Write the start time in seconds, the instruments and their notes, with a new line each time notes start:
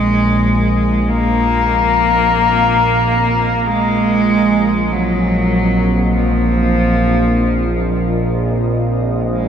Already playing: synth drone A#1, cello G#3, ambient pad C4 F4 A#4 D#5
1.09 cello A#3
3.67 cello G#3
4.92 cello F#3
6.17 cello F3
9.34 cello G#3